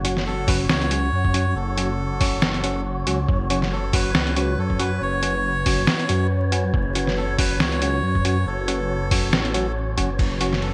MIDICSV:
0, 0, Header, 1, 7, 480
1, 0, Start_track
1, 0, Key_signature, 3, "minor"
1, 0, Tempo, 431655
1, 1732, Time_signature, 4, 2, 24, 8
1, 11942, End_track
2, 0, Start_track
2, 0, Title_t, "Synth texture"
2, 0, Program_c, 0, 99
2, 0, Note_on_c, 0, 73, 83
2, 11324, Note_off_c, 0, 73, 0
2, 11337, Note_on_c, 0, 73, 88
2, 11942, Note_off_c, 0, 73, 0
2, 11942, End_track
3, 0, Start_track
3, 0, Title_t, "Ambient pad"
3, 0, Program_c, 1, 92
3, 0, Note_on_c, 1, 61, 77
3, 0, Note_on_c, 1, 66, 72
3, 0, Note_on_c, 1, 78, 87
3, 3637, Note_off_c, 1, 78, 0
3, 3653, Note_on_c, 1, 71, 90
3, 11315, Note_off_c, 1, 71, 0
3, 11331, Note_on_c, 1, 80, 88
3, 11942, Note_off_c, 1, 61, 0
3, 11942, Note_off_c, 1, 66, 0
3, 11942, Note_off_c, 1, 80, 0
3, 11942, End_track
4, 0, Start_track
4, 0, Title_t, "Melodica"
4, 0, Program_c, 2, 22
4, 298, Note_on_c, 2, 69, 98
4, 533, Note_on_c, 2, 71, 96
4, 542, Note_off_c, 2, 69, 0
4, 641, Note_off_c, 2, 71, 0
4, 770, Note_on_c, 2, 73, 118
4, 1731, Note_on_c, 2, 69, 93
4, 1760, Note_off_c, 2, 73, 0
4, 3128, Note_off_c, 2, 69, 0
4, 4136, Note_on_c, 2, 69, 88
4, 4377, Note_on_c, 2, 71, 101
4, 4381, Note_off_c, 2, 69, 0
4, 4844, Note_off_c, 2, 71, 0
4, 4861, Note_on_c, 2, 71, 95
4, 5100, Note_on_c, 2, 69, 93
4, 5104, Note_off_c, 2, 71, 0
4, 5340, Note_on_c, 2, 71, 104
4, 5343, Note_off_c, 2, 69, 0
4, 5582, Note_on_c, 2, 73, 112
4, 5583, Note_off_c, 2, 71, 0
4, 6973, Note_off_c, 2, 73, 0
4, 7977, Note_on_c, 2, 69, 96
4, 8198, Note_off_c, 2, 69, 0
4, 8219, Note_on_c, 2, 71, 103
4, 8439, Note_off_c, 2, 71, 0
4, 8460, Note_on_c, 2, 73, 119
4, 9421, Note_on_c, 2, 69, 92
4, 9445, Note_off_c, 2, 73, 0
4, 10812, Note_off_c, 2, 69, 0
4, 11813, Note_on_c, 2, 69, 91
4, 11921, Note_off_c, 2, 69, 0
4, 11942, End_track
5, 0, Start_track
5, 0, Title_t, "Synth stab"
5, 0, Program_c, 3, 62
5, 49, Note_on_c, 3, 54, 88
5, 50, Note_on_c, 3, 61, 85
5, 50, Note_on_c, 3, 66, 104
5, 185, Note_off_c, 3, 54, 0
5, 185, Note_off_c, 3, 66, 0
5, 186, Note_off_c, 3, 61, 0
5, 529, Note_on_c, 3, 54, 80
5, 530, Note_on_c, 3, 61, 72
5, 530, Note_on_c, 3, 66, 88
5, 729, Note_off_c, 3, 54, 0
5, 729, Note_off_c, 3, 61, 0
5, 729, Note_off_c, 3, 66, 0
5, 1009, Note_on_c, 3, 54, 96
5, 1009, Note_on_c, 3, 61, 87
5, 1010, Note_on_c, 3, 66, 105
5, 1209, Note_off_c, 3, 54, 0
5, 1209, Note_off_c, 3, 61, 0
5, 1209, Note_off_c, 3, 66, 0
5, 1490, Note_on_c, 3, 54, 98
5, 1490, Note_on_c, 3, 61, 86
5, 1490, Note_on_c, 3, 66, 100
5, 1625, Note_off_c, 3, 54, 0
5, 1625, Note_off_c, 3, 61, 0
5, 1626, Note_off_c, 3, 66, 0
5, 1971, Note_on_c, 3, 66, 97
5, 1972, Note_on_c, 3, 54, 91
5, 1972, Note_on_c, 3, 61, 83
5, 2106, Note_off_c, 3, 54, 0
5, 2106, Note_off_c, 3, 61, 0
5, 2106, Note_off_c, 3, 66, 0
5, 2452, Note_on_c, 3, 54, 80
5, 2452, Note_on_c, 3, 61, 72
5, 2453, Note_on_c, 3, 66, 85
5, 2651, Note_off_c, 3, 54, 0
5, 2651, Note_off_c, 3, 61, 0
5, 2651, Note_off_c, 3, 66, 0
5, 2932, Note_on_c, 3, 54, 96
5, 2933, Note_on_c, 3, 61, 87
5, 2933, Note_on_c, 3, 66, 107
5, 3131, Note_off_c, 3, 54, 0
5, 3131, Note_off_c, 3, 61, 0
5, 3131, Note_off_c, 3, 66, 0
5, 3412, Note_on_c, 3, 54, 92
5, 3412, Note_on_c, 3, 66, 105
5, 3413, Note_on_c, 3, 61, 86
5, 3546, Note_off_c, 3, 54, 0
5, 3546, Note_off_c, 3, 66, 0
5, 3547, Note_off_c, 3, 61, 0
5, 3892, Note_on_c, 3, 66, 101
5, 3893, Note_on_c, 3, 54, 91
5, 3893, Note_on_c, 3, 61, 88
5, 4026, Note_off_c, 3, 66, 0
5, 4027, Note_off_c, 3, 54, 0
5, 4027, Note_off_c, 3, 61, 0
5, 4371, Note_on_c, 3, 66, 89
5, 4372, Note_on_c, 3, 54, 78
5, 4372, Note_on_c, 3, 61, 68
5, 4570, Note_off_c, 3, 66, 0
5, 4571, Note_off_c, 3, 54, 0
5, 4571, Note_off_c, 3, 61, 0
5, 4851, Note_on_c, 3, 54, 95
5, 4851, Note_on_c, 3, 61, 87
5, 4851, Note_on_c, 3, 66, 106
5, 5050, Note_off_c, 3, 54, 0
5, 5050, Note_off_c, 3, 61, 0
5, 5050, Note_off_c, 3, 66, 0
5, 5331, Note_on_c, 3, 54, 96
5, 5331, Note_on_c, 3, 61, 89
5, 5331, Note_on_c, 3, 66, 101
5, 5466, Note_off_c, 3, 54, 0
5, 5466, Note_off_c, 3, 61, 0
5, 5466, Note_off_c, 3, 66, 0
5, 5811, Note_on_c, 3, 54, 94
5, 5811, Note_on_c, 3, 61, 81
5, 5811, Note_on_c, 3, 66, 100
5, 5946, Note_off_c, 3, 54, 0
5, 5946, Note_off_c, 3, 61, 0
5, 5946, Note_off_c, 3, 66, 0
5, 6292, Note_on_c, 3, 54, 79
5, 6292, Note_on_c, 3, 66, 87
5, 6293, Note_on_c, 3, 61, 73
5, 6491, Note_off_c, 3, 54, 0
5, 6491, Note_off_c, 3, 61, 0
5, 6491, Note_off_c, 3, 66, 0
5, 6771, Note_on_c, 3, 54, 97
5, 6771, Note_on_c, 3, 61, 89
5, 6772, Note_on_c, 3, 66, 104
5, 6970, Note_off_c, 3, 54, 0
5, 6970, Note_off_c, 3, 61, 0
5, 6970, Note_off_c, 3, 66, 0
5, 7250, Note_on_c, 3, 66, 105
5, 7251, Note_on_c, 3, 54, 96
5, 7251, Note_on_c, 3, 61, 88
5, 7386, Note_off_c, 3, 54, 0
5, 7386, Note_off_c, 3, 61, 0
5, 7386, Note_off_c, 3, 66, 0
5, 7732, Note_on_c, 3, 54, 89
5, 7732, Note_on_c, 3, 61, 82
5, 7732, Note_on_c, 3, 66, 101
5, 7866, Note_off_c, 3, 61, 0
5, 7866, Note_off_c, 3, 66, 0
5, 7867, Note_off_c, 3, 54, 0
5, 8211, Note_on_c, 3, 61, 73
5, 8212, Note_on_c, 3, 54, 78
5, 8212, Note_on_c, 3, 66, 85
5, 8410, Note_off_c, 3, 61, 0
5, 8411, Note_off_c, 3, 54, 0
5, 8411, Note_off_c, 3, 66, 0
5, 8691, Note_on_c, 3, 61, 86
5, 8691, Note_on_c, 3, 66, 103
5, 8692, Note_on_c, 3, 54, 93
5, 8890, Note_off_c, 3, 54, 0
5, 8890, Note_off_c, 3, 61, 0
5, 8890, Note_off_c, 3, 66, 0
5, 9171, Note_on_c, 3, 61, 87
5, 9172, Note_on_c, 3, 54, 94
5, 9172, Note_on_c, 3, 66, 109
5, 9306, Note_off_c, 3, 61, 0
5, 9307, Note_off_c, 3, 54, 0
5, 9307, Note_off_c, 3, 66, 0
5, 9649, Note_on_c, 3, 54, 95
5, 9650, Note_on_c, 3, 61, 85
5, 9650, Note_on_c, 3, 66, 102
5, 9785, Note_off_c, 3, 54, 0
5, 9785, Note_off_c, 3, 66, 0
5, 9786, Note_off_c, 3, 61, 0
5, 10131, Note_on_c, 3, 54, 80
5, 10131, Note_on_c, 3, 61, 70
5, 10132, Note_on_c, 3, 66, 87
5, 10330, Note_off_c, 3, 54, 0
5, 10330, Note_off_c, 3, 61, 0
5, 10331, Note_off_c, 3, 66, 0
5, 10609, Note_on_c, 3, 54, 102
5, 10609, Note_on_c, 3, 66, 112
5, 10610, Note_on_c, 3, 61, 91
5, 10745, Note_off_c, 3, 54, 0
5, 10745, Note_off_c, 3, 61, 0
5, 10745, Note_off_c, 3, 66, 0
5, 11091, Note_on_c, 3, 61, 93
5, 11091, Note_on_c, 3, 66, 110
5, 11092, Note_on_c, 3, 54, 100
5, 11226, Note_off_c, 3, 61, 0
5, 11226, Note_off_c, 3, 66, 0
5, 11227, Note_off_c, 3, 54, 0
5, 11570, Note_on_c, 3, 54, 97
5, 11570, Note_on_c, 3, 61, 82
5, 11570, Note_on_c, 3, 66, 102
5, 11705, Note_off_c, 3, 61, 0
5, 11705, Note_off_c, 3, 66, 0
5, 11706, Note_off_c, 3, 54, 0
5, 11942, End_track
6, 0, Start_track
6, 0, Title_t, "Detuned saw bass"
6, 0, Program_c, 4, 39
6, 0, Note_on_c, 4, 30, 103
6, 755, Note_off_c, 4, 30, 0
6, 772, Note_on_c, 4, 37, 101
6, 1235, Note_off_c, 4, 37, 0
6, 1252, Note_on_c, 4, 42, 91
6, 1715, Note_off_c, 4, 42, 0
6, 1730, Note_on_c, 4, 30, 102
6, 2674, Note_off_c, 4, 30, 0
6, 2693, Note_on_c, 4, 30, 100
6, 3396, Note_off_c, 4, 30, 0
6, 3413, Note_on_c, 4, 37, 98
6, 3636, Note_off_c, 4, 37, 0
6, 3653, Note_on_c, 4, 30, 100
6, 4596, Note_off_c, 4, 30, 0
6, 4615, Note_on_c, 4, 37, 97
6, 5077, Note_off_c, 4, 37, 0
6, 5094, Note_on_c, 4, 42, 90
6, 5557, Note_off_c, 4, 42, 0
6, 5576, Note_on_c, 4, 30, 100
6, 6517, Note_off_c, 4, 30, 0
6, 6776, Note_on_c, 4, 42, 97
6, 7478, Note_off_c, 4, 42, 0
6, 7492, Note_on_c, 4, 30, 101
6, 8435, Note_off_c, 4, 30, 0
6, 8452, Note_on_c, 4, 37, 99
6, 8915, Note_off_c, 4, 37, 0
6, 8930, Note_on_c, 4, 42, 92
6, 9394, Note_off_c, 4, 42, 0
6, 9411, Note_on_c, 4, 30, 104
6, 10355, Note_off_c, 4, 30, 0
6, 10374, Note_on_c, 4, 33, 102
6, 11076, Note_off_c, 4, 33, 0
6, 11092, Note_on_c, 4, 30, 100
6, 11315, Note_off_c, 4, 30, 0
6, 11333, Note_on_c, 4, 30, 101
6, 11942, Note_off_c, 4, 30, 0
6, 11942, End_track
7, 0, Start_track
7, 0, Title_t, "Drums"
7, 52, Note_on_c, 9, 42, 84
7, 163, Note_off_c, 9, 42, 0
7, 186, Note_on_c, 9, 38, 40
7, 297, Note_off_c, 9, 38, 0
7, 532, Note_on_c, 9, 36, 112
7, 532, Note_on_c, 9, 46, 90
7, 643, Note_off_c, 9, 36, 0
7, 643, Note_off_c, 9, 46, 0
7, 772, Note_on_c, 9, 38, 122
7, 883, Note_off_c, 9, 38, 0
7, 907, Note_on_c, 9, 42, 38
7, 1012, Note_off_c, 9, 42, 0
7, 1012, Note_on_c, 9, 42, 81
7, 1123, Note_off_c, 9, 42, 0
7, 1386, Note_on_c, 9, 36, 69
7, 1493, Note_on_c, 9, 42, 82
7, 1497, Note_off_c, 9, 36, 0
7, 1604, Note_off_c, 9, 42, 0
7, 1974, Note_on_c, 9, 42, 78
7, 2085, Note_off_c, 9, 42, 0
7, 2453, Note_on_c, 9, 36, 108
7, 2453, Note_on_c, 9, 46, 89
7, 2564, Note_off_c, 9, 36, 0
7, 2564, Note_off_c, 9, 46, 0
7, 2693, Note_on_c, 9, 38, 121
7, 2804, Note_off_c, 9, 38, 0
7, 2827, Note_on_c, 9, 42, 37
7, 2932, Note_off_c, 9, 42, 0
7, 2932, Note_on_c, 9, 42, 81
7, 3044, Note_off_c, 9, 42, 0
7, 3412, Note_on_c, 9, 42, 83
7, 3523, Note_off_c, 9, 42, 0
7, 3653, Note_on_c, 9, 36, 125
7, 3764, Note_off_c, 9, 36, 0
7, 3894, Note_on_c, 9, 42, 78
7, 4005, Note_off_c, 9, 42, 0
7, 4028, Note_on_c, 9, 38, 37
7, 4139, Note_off_c, 9, 38, 0
7, 4373, Note_on_c, 9, 36, 106
7, 4373, Note_on_c, 9, 46, 94
7, 4484, Note_off_c, 9, 46, 0
7, 4485, Note_off_c, 9, 36, 0
7, 4612, Note_on_c, 9, 38, 121
7, 4723, Note_off_c, 9, 38, 0
7, 4746, Note_on_c, 9, 42, 37
7, 4853, Note_off_c, 9, 42, 0
7, 4853, Note_on_c, 9, 42, 75
7, 4964, Note_off_c, 9, 42, 0
7, 5227, Note_on_c, 9, 36, 67
7, 5332, Note_on_c, 9, 42, 77
7, 5338, Note_off_c, 9, 36, 0
7, 5444, Note_off_c, 9, 42, 0
7, 5812, Note_on_c, 9, 42, 75
7, 5923, Note_off_c, 9, 42, 0
7, 6292, Note_on_c, 9, 46, 94
7, 6293, Note_on_c, 9, 36, 102
7, 6404, Note_off_c, 9, 36, 0
7, 6404, Note_off_c, 9, 46, 0
7, 6531, Note_on_c, 9, 38, 119
7, 6642, Note_off_c, 9, 38, 0
7, 6666, Note_on_c, 9, 42, 37
7, 6772, Note_off_c, 9, 42, 0
7, 6772, Note_on_c, 9, 42, 74
7, 6883, Note_off_c, 9, 42, 0
7, 7252, Note_on_c, 9, 42, 80
7, 7363, Note_off_c, 9, 42, 0
7, 7492, Note_on_c, 9, 36, 113
7, 7603, Note_off_c, 9, 36, 0
7, 7733, Note_on_c, 9, 42, 79
7, 7844, Note_off_c, 9, 42, 0
7, 7866, Note_on_c, 9, 38, 37
7, 7978, Note_off_c, 9, 38, 0
7, 8212, Note_on_c, 9, 36, 99
7, 8212, Note_on_c, 9, 46, 97
7, 8323, Note_off_c, 9, 36, 0
7, 8323, Note_off_c, 9, 46, 0
7, 8453, Note_on_c, 9, 38, 118
7, 8564, Note_off_c, 9, 38, 0
7, 8586, Note_on_c, 9, 42, 38
7, 8693, Note_off_c, 9, 42, 0
7, 8693, Note_on_c, 9, 42, 79
7, 8804, Note_off_c, 9, 42, 0
7, 9066, Note_on_c, 9, 36, 61
7, 9173, Note_on_c, 9, 42, 79
7, 9177, Note_off_c, 9, 36, 0
7, 9284, Note_off_c, 9, 42, 0
7, 9653, Note_on_c, 9, 42, 81
7, 9764, Note_off_c, 9, 42, 0
7, 10133, Note_on_c, 9, 36, 101
7, 10133, Note_on_c, 9, 46, 101
7, 10244, Note_off_c, 9, 36, 0
7, 10244, Note_off_c, 9, 46, 0
7, 10374, Note_on_c, 9, 38, 117
7, 10485, Note_off_c, 9, 38, 0
7, 10507, Note_on_c, 9, 42, 40
7, 10613, Note_off_c, 9, 42, 0
7, 10613, Note_on_c, 9, 42, 79
7, 10724, Note_off_c, 9, 42, 0
7, 11092, Note_on_c, 9, 36, 62
7, 11093, Note_on_c, 9, 42, 82
7, 11203, Note_off_c, 9, 36, 0
7, 11205, Note_off_c, 9, 42, 0
7, 11332, Note_on_c, 9, 36, 127
7, 11334, Note_on_c, 9, 49, 78
7, 11334, Note_on_c, 9, 51, 64
7, 11443, Note_off_c, 9, 36, 0
7, 11445, Note_off_c, 9, 49, 0
7, 11445, Note_off_c, 9, 51, 0
7, 11572, Note_on_c, 9, 42, 86
7, 11684, Note_off_c, 9, 42, 0
7, 11705, Note_on_c, 9, 38, 37
7, 11812, Note_on_c, 9, 51, 45
7, 11817, Note_off_c, 9, 38, 0
7, 11923, Note_off_c, 9, 51, 0
7, 11942, End_track
0, 0, End_of_file